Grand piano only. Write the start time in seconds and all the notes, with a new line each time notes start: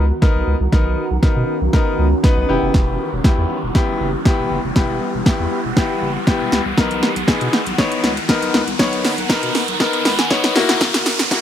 0.22 B3 D#4 A#4
0.72 B3 D#4 A#4
1.23 B3 D#4 A#4
1.73 B3 D#4 A#4
2.23 B3 D#4 B4
2.49 B3 E4 G4
3.24 B3 E4 G4
3.75 B3 E4 G4
4.25 B3 E4 G4
4.76 B3 E4 G4
5.26 B3 E4 G4
5.76 B3 E4 G4
6.27 B3 E4 G4
6.77 B3 D#4 A#4
7.28 B3 D#4 G#4
7.78 B3 D#4 C#5
8.29 B3 D#4 A#4
8.79 B3 D#4 C#5
9.30 B3 D#4 A#4
9.80 B3 D#4 A#4
10.05 B5
10.19 G#5
10.30 B3 D#4 C#5 F#5
10.55 A#3 E4 F#4
11.31 A#3 E4 F#4